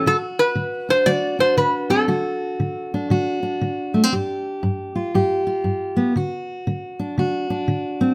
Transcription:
0, 0, Header, 1, 3, 480
1, 0, Start_track
1, 0, Tempo, 508906
1, 49, Time_signature, 4, 2, 24, 8
1, 7680, End_track
2, 0, Start_track
2, 0, Title_t, "Resonator guitar played with a steel bar"
2, 0, Program_c, 0, 25
2, 69, Note_on_c, 0, 69, 86
2, 148, Note_off_c, 0, 69, 0
2, 370, Note_on_c, 0, 71, 88
2, 848, Note_off_c, 0, 71, 0
2, 852, Note_on_c, 0, 72, 85
2, 1000, Note_on_c, 0, 74, 97
2, 1024, Note_off_c, 0, 72, 0
2, 1284, Note_off_c, 0, 74, 0
2, 1323, Note_on_c, 0, 72, 84
2, 1482, Note_off_c, 0, 72, 0
2, 1486, Note_on_c, 0, 71, 83
2, 1795, Note_on_c, 0, 69, 76
2, 1798, Note_off_c, 0, 71, 0
2, 3195, Note_off_c, 0, 69, 0
2, 7680, End_track
3, 0, Start_track
3, 0, Title_t, "Steel-string acoustic guitar"
3, 0, Program_c, 1, 25
3, 59, Note_on_c, 1, 50, 72
3, 65, Note_on_c, 1, 66, 64
3, 498, Note_off_c, 1, 50, 0
3, 522, Note_on_c, 1, 50, 66
3, 837, Note_on_c, 1, 62, 48
3, 969, Note_off_c, 1, 50, 0
3, 1001, Note_on_c, 1, 50, 72
3, 1002, Note_off_c, 1, 66, 0
3, 1006, Note_on_c, 1, 66, 69
3, 1305, Note_off_c, 1, 62, 0
3, 1309, Note_on_c, 1, 62, 51
3, 1449, Note_off_c, 1, 50, 0
3, 1481, Note_on_c, 1, 50, 68
3, 1790, Note_on_c, 1, 60, 60
3, 1929, Note_off_c, 1, 50, 0
3, 1947, Note_off_c, 1, 60, 0
3, 1955, Note_off_c, 1, 66, 0
3, 1961, Note_on_c, 1, 50, 81
3, 1966, Note_on_c, 1, 66, 72
3, 2409, Note_off_c, 1, 50, 0
3, 2449, Note_on_c, 1, 50, 65
3, 2769, Note_off_c, 1, 62, 0
3, 2772, Note_on_c, 1, 62, 58
3, 2893, Note_off_c, 1, 50, 0
3, 2924, Note_off_c, 1, 66, 0
3, 2925, Note_on_c, 1, 50, 79
3, 2935, Note_on_c, 1, 66, 72
3, 3228, Note_off_c, 1, 62, 0
3, 3232, Note_on_c, 1, 62, 52
3, 3371, Note_off_c, 1, 50, 0
3, 3409, Note_on_c, 1, 50, 74
3, 3716, Note_on_c, 1, 57, 58
3, 3806, Note_off_c, 1, 57, 0
3, 3806, Note_on_c, 1, 60, 52
3, 3853, Note_off_c, 1, 50, 0
3, 3889, Note_on_c, 1, 43, 76
3, 3892, Note_off_c, 1, 60, 0
3, 3892, Note_off_c, 1, 66, 0
3, 3897, Note_on_c, 1, 67, 71
3, 4334, Note_off_c, 1, 43, 0
3, 4365, Note_on_c, 1, 43, 76
3, 4670, Note_off_c, 1, 62, 0
3, 4673, Note_on_c, 1, 65, 51
3, 4811, Note_off_c, 1, 43, 0
3, 4846, Note_off_c, 1, 67, 0
3, 4852, Note_on_c, 1, 43, 73
3, 4857, Note_on_c, 1, 67, 75
3, 5145, Note_off_c, 1, 65, 0
3, 5156, Note_on_c, 1, 65, 56
3, 5295, Note_off_c, 1, 43, 0
3, 5322, Note_on_c, 1, 43, 65
3, 5626, Note_on_c, 1, 59, 61
3, 5770, Note_off_c, 1, 43, 0
3, 5786, Note_off_c, 1, 59, 0
3, 5791, Note_off_c, 1, 65, 0
3, 5792, Note_off_c, 1, 67, 0
3, 5806, Note_on_c, 1, 50, 76
3, 5818, Note_on_c, 1, 66, 64
3, 6252, Note_off_c, 1, 50, 0
3, 6291, Note_on_c, 1, 50, 66
3, 6597, Note_on_c, 1, 62, 54
3, 6735, Note_off_c, 1, 50, 0
3, 6768, Note_on_c, 1, 50, 71
3, 6770, Note_off_c, 1, 66, 0
3, 6781, Note_on_c, 1, 66, 67
3, 7072, Note_off_c, 1, 62, 0
3, 7076, Note_on_c, 1, 62, 58
3, 7214, Note_off_c, 1, 50, 0
3, 7241, Note_on_c, 1, 50, 70
3, 7553, Note_on_c, 1, 60, 62
3, 7680, Note_off_c, 1, 50, 0
3, 7680, Note_off_c, 1, 60, 0
3, 7680, Note_off_c, 1, 62, 0
3, 7680, Note_off_c, 1, 66, 0
3, 7680, End_track
0, 0, End_of_file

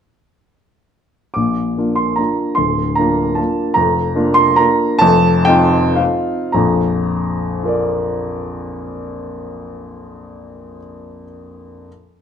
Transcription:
0, 0, Header, 1, 2, 480
1, 0, Start_track
1, 0, Key_signature, -2, "major"
1, 0, Tempo, 408998
1, 1595, Time_signature, 3, 2, 24, 8
1, 2567, Tempo, 396825
1, 4967, Tempo, 433213
1, 6407, Tempo, 542005
1, 8807, Tempo, 528169
1, 10247, Tempo, 508475
1, 12561, End_track
2, 0, Start_track
2, 0, Title_t, "Upright piano"
2, 0, Program_c, 0, 0
2, 1569, Note_on_c, 0, 86, 61
2, 1594, Note_on_c, 0, 34, 39
2, 1599, Note_on_c, 0, 46, 38
2, 1783, Control_c, 0, 64, 127
2, 2071, Note_off_c, 0, 34, 0
2, 2074, Note_off_c, 0, 46, 0
2, 2079, Note_on_c, 0, 58, 30
2, 2088, Note_on_c, 0, 62, 29
2, 2093, Note_on_c, 0, 65, 36
2, 2294, Note_on_c, 0, 84, 59
2, 2316, Note_off_c, 0, 86, 0
2, 2517, Note_off_c, 0, 58, 0
2, 2521, Note_off_c, 0, 62, 0
2, 2524, Note_off_c, 0, 65, 0
2, 2532, Note_on_c, 0, 82, 57
2, 2550, Note_off_c, 0, 84, 0
2, 2564, Note_on_c, 0, 58, 25
2, 2566, Note_on_c, 0, 62, 27
2, 2567, Note_on_c, 0, 65, 34
2, 2585, Control_c, 0, 64, 0
2, 2997, Note_off_c, 0, 58, 0
2, 2998, Note_off_c, 0, 62, 0
2, 2999, Note_off_c, 0, 65, 0
2, 3004, Note_on_c, 0, 84, 64
2, 3028, Note_on_c, 0, 38, 44
2, 3029, Note_off_c, 0, 82, 0
2, 3033, Note_on_c, 0, 26, 44
2, 3267, Control_c, 0, 64, 127
2, 3495, Note_on_c, 0, 82, 66
2, 3505, Note_off_c, 0, 38, 0
2, 3507, Note_off_c, 0, 26, 0
2, 3507, Note_off_c, 0, 84, 0
2, 3523, Note_on_c, 0, 58, 39
2, 3532, Note_on_c, 0, 62, 37
2, 3539, Note_on_c, 0, 65, 41
2, 3966, Note_off_c, 0, 58, 0
2, 3971, Note_off_c, 0, 62, 0
2, 3974, Note_off_c, 0, 65, 0
2, 3974, Note_on_c, 0, 81, 55
2, 4000, Note_off_c, 0, 82, 0
2, 4003, Note_on_c, 0, 58, 32
2, 4005, Note_on_c, 0, 65, 37
2, 4008, Note_on_c, 0, 62, 29
2, 4030, Control_c, 0, 64, 0
2, 4435, Note_off_c, 0, 58, 0
2, 4436, Note_off_c, 0, 65, 0
2, 4438, Note_off_c, 0, 62, 0
2, 4444, Note_on_c, 0, 82, 80
2, 4466, Note_on_c, 0, 29, 53
2, 4468, Note_off_c, 0, 81, 0
2, 4471, Note_on_c, 0, 41, 56
2, 4713, Control_c, 0, 64, 127
2, 4940, Note_off_c, 0, 29, 0
2, 4942, Note_off_c, 0, 41, 0
2, 4942, Note_on_c, 0, 58, 45
2, 4947, Note_on_c, 0, 62, 47
2, 4954, Note_on_c, 0, 65, 50
2, 5155, Note_on_c, 0, 84, 92
2, 5176, Note_off_c, 0, 82, 0
2, 5379, Note_off_c, 0, 58, 0
2, 5382, Note_off_c, 0, 62, 0
2, 5385, Note_off_c, 0, 65, 0
2, 5400, Note_on_c, 0, 82, 85
2, 5414, Note_off_c, 0, 84, 0
2, 5423, Note_on_c, 0, 58, 44
2, 5429, Note_on_c, 0, 62, 46
2, 5433, Note_on_c, 0, 65, 44
2, 5451, Control_c, 0, 64, 0
2, 5855, Note_off_c, 0, 58, 0
2, 5858, Note_off_c, 0, 62, 0
2, 5861, Note_off_c, 0, 65, 0
2, 5868, Note_on_c, 0, 81, 106
2, 5888, Note_off_c, 0, 82, 0
2, 5896, Note_on_c, 0, 41, 74
2, 5897, Note_on_c, 0, 29, 70
2, 6144, Control_c, 0, 64, 127
2, 6382, Note_on_c, 0, 79, 101
2, 6388, Note_off_c, 0, 29, 0
2, 6388, Note_off_c, 0, 41, 0
2, 6389, Note_off_c, 0, 81, 0
2, 6402, Note_on_c, 0, 60, 60
2, 6409, Note_on_c, 0, 63, 60
2, 6410, Note_on_c, 0, 65, 65
2, 6834, Note_off_c, 0, 60, 0
2, 6837, Note_off_c, 0, 63, 0
2, 6838, Note_off_c, 0, 65, 0
2, 6839, Note_on_c, 0, 77, 64
2, 6861, Note_on_c, 0, 60, 42
2, 6862, Note_off_c, 0, 79, 0
2, 6864, Note_on_c, 0, 63, 44
2, 6872, Note_on_c, 0, 65, 48
2, 6883, Control_c, 0, 64, 0
2, 7326, Note_off_c, 0, 60, 0
2, 7328, Note_off_c, 0, 63, 0
2, 7332, Note_off_c, 0, 65, 0
2, 7340, Note_on_c, 0, 82, 58
2, 7351, Note_off_c, 0, 77, 0
2, 7353, Note_on_c, 0, 34, 63
2, 7360, Note_on_c, 0, 41, 58
2, 7574, Control_c, 0, 64, 127
2, 8320, Note_on_c, 0, 65, 39
2, 8340, Note_on_c, 0, 70, 46
2, 8360, Note_on_c, 0, 74, 46
2, 11187, Note_off_c, 0, 82, 0
2, 11201, Note_off_c, 0, 34, 0
2, 11208, Note_off_c, 0, 41, 0
2, 11621, Note_off_c, 0, 65, 0
2, 11631, Note_off_c, 0, 70, 0
2, 11641, Note_off_c, 0, 74, 0
2, 12245, Control_c, 0, 64, 0
2, 12561, End_track
0, 0, End_of_file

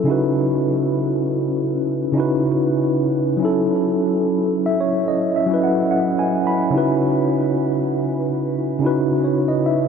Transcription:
0, 0, Header, 1, 2, 480
1, 0, Start_track
1, 0, Key_signature, 4, "minor"
1, 0, Tempo, 833333
1, 38, Time_signature, 4, 2, 24, 8
1, 5691, End_track
2, 0, Start_track
2, 0, Title_t, "Tine electric piano"
2, 0, Program_c, 0, 4
2, 0, Control_c, 0, 64, 127
2, 22, Note_on_c, 0, 49, 86
2, 29, Note_on_c, 0, 61, 75
2, 38, Note_on_c, 0, 63, 75
2, 46, Control_c, 0, 64, 0
2, 48, Note_on_c, 0, 64, 76
2, 56, Note_on_c, 0, 66, 76
2, 65, Note_on_c, 0, 71, 84
2, 156, Control_c, 0, 64, 127
2, 907, Note_off_c, 0, 49, 0
2, 911, Note_off_c, 0, 61, 0
2, 915, Note_off_c, 0, 63, 0
2, 920, Note_off_c, 0, 64, 0
2, 924, Note_off_c, 0, 66, 0
2, 929, Note_off_c, 0, 71, 0
2, 1221, Note_on_c, 0, 49, 77
2, 1230, Note_on_c, 0, 61, 75
2, 1238, Note_on_c, 0, 63, 73
2, 1248, Note_on_c, 0, 64, 75
2, 1257, Note_on_c, 0, 66, 70
2, 1266, Note_on_c, 0, 71, 83
2, 1888, Note_off_c, 0, 49, 0
2, 1892, Note_off_c, 0, 61, 0
2, 1896, Note_off_c, 0, 63, 0
2, 1901, Note_off_c, 0, 64, 0
2, 1906, Note_off_c, 0, 66, 0
2, 1910, Note_off_c, 0, 71, 0
2, 1940, Note_on_c, 0, 54, 79
2, 1956, Note_on_c, 0, 61, 76
2, 1964, Control_c, 0, 64, 0
2, 1972, Note_on_c, 0, 64, 75
2, 1985, Note_on_c, 0, 69, 88
2, 2059, Control_c, 0, 64, 127
2, 2684, Note_on_c, 0, 76, 70
2, 2756, Note_off_c, 0, 76, 0
2, 2768, Note_on_c, 0, 73, 69
2, 2827, Note_off_c, 0, 54, 0
2, 2835, Note_off_c, 0, 61, 0
2, 2843, Note_off_c, 0, 64, 0
2, 2849, Note_off_c, 0, 69, 0
2, 2912, Note_off_c, 0, 73, 0
2, 2926, Note_on_c, 0, 75, 68
2, 3071, Note_off_c, 0, 75, 0
2, 3088, Note_on_c, 0, 76, 67
2, 3144, Note_on_c, 0, 54, 78
2, 3158, Note_on_c, 0, 61, 72
2, 3174, Note_on_c, 0, 64, 69
2, 3188, Note_on_c, 0, 71, 87
2, 3232, Note_off_c, 0, 76, 0
2, 3246, Note_on_c, 0, 78, 64
2, 3391, Note_off_c, 0, 78, 0
2, 3404, Note_on_c, 0, 78, 63
2, 3550, Note_off_c, 0, 78, 0
2, 3565, Note_on_c, 0, 80, 64
2, 3711, Note_off_c, 0, 80, 0
2, 3726, Note_on_c, 0, 83, 62
2, 3809, Note_off_c, 0, 54, 0
2, 3816, Note_off_c, 0, 61, 0
2, 3824, Note_off_c, 0, 64, 0
2, 3831, Note_off_c, 0, 71, 0
2, 3860, Note_on_c, 0, 49, 78
2, 3868, Note_on_c, 0, 61, 71
2, 3871, Note_off_c, 0, 83, 0
2, 3877, Note_on_c, 0, 63, 72
2, 3885, Note_on_c, 0, 64, 69
2, 3886, Control_c, 0, 64, 0
2, 3894, Note_on_c, 0, 66, 69
2, 3904, Note_on_c, 0, 71, 90
2, 4002, Control_c, 0, 64, 127
2, 4746, Note_off_c, 0, 49, 0
2, 4750, Note_off_c, 0, 61, 0
2, 4755, Note_off_c, 0, 63, 0
2, 4759, Note_off_c, 0, 64, 0
2, 4764, Note_off_c, 0, 66, 0
2, 4768, Note_off_c, 0, 71, 0
2, 5063, Note_on_c, 0, 49, 77
2, 5071, Note_on_c, 0, 61, 73
2, 5080, Note_on_c, 0, 63, 71
2, 5088, Note_on_c, 0, 64, 69
2, 5097, Note_on_c, 0, 66, 67
2, 5106, Note_on_c, 0, 71, 90
2, 5323, Note_on_c, 0, 73, 60
2, 5451, Note_off_c, 0, 73, 0
2, 5462, Note_on_c, 0, 75, 66
2, 5557, Note_off_c, 0, 75, 0
2, 5565, Note_on_c, 0, 76, 64
2, 5691, Note_off_c, 0, 49, 0
2, 5691, Note_off_c, 0, 61, 0
2, 5691, Note_off_c, 0, 63, 0
2, 5691, Note_off_c, 0, 64, 0
2, 5691, Note_off_c, 0, 66, 0
2, 5691, Note_off_c, 0, 71, 0
2, 5691, Note_off_c, 0, 76, 0
2, 5691, End_track
0, 0, End_of_file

